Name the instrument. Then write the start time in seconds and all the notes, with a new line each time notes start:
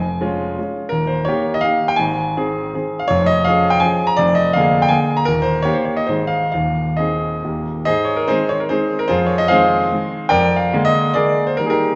grand piano
Already playing: F1 F2 G#5
0.21 G#3 C#4 F4
0.59 G#3 C#4 F4
0.89 D#1 D#2 A#4
1.07 C5
1.25 D#3 A#3 G4 C#5
1.54 D#5
1.61 D#3 A#3 G4 F5
1.88 G5
1.96 G#1 G#2 G#5
2.36 D#3 C4 G#4
2.74 D#3 C4 G#4
2.99 F5
3.08 F1 F2 C#5
3.26 D#5
3.44 F3 C#4 G#4 F5
3.70 G5
3.80 F3 C#4 G#4 G#5
4.07 A#5
4.17 F1 F2 D5
4.35 D#5
4.53 D3 A#3 G#4 F5
4.82 G5
4.89 D3 A#3 G#4 G#5
5.17 A#5
5.25 D#1 D#2 A#4
5.42 C5
5.62 D#3 A#3 G4 C#5
5.73 C5
5.85 C#5
5.97 D#5
6.07 G#1 G#2 D#3 G#3 G#4 C5
6.27 F5
6.52 D#1 D#2 F5
6.97 D#3 C4 G#4 D#5
7.44 D#1 D#2 D#3 A#3 G4
7.85 G#2 G#4 C5 D#5
8.05 C#5
8.17 A#4
8.28 D#3 G#3 C4 D#4 G#4 C5
8.49 C#5
8.60 A#4
8.69 D#3 G#3 C4 D#4 G#4 C5
8.99 A#4
9.08 F2 F4 G#4 C5
9.26 C#5
9.38 D#5
9.48 D#3 G#3 C4 G#4 C5 F5
9.92 D#3 G#3 C4
10.29 F2 A#4 D5 G5
10.56 F5
10.73 D3 G#3 A#3
10.85 D#5
11.14 D3 G#3 A#3 G#4 A#4 D5
11.47 C5
11.57 D#3 G3 A#3 A#4
11.66 G#4 A#4
11.71 D#4 G4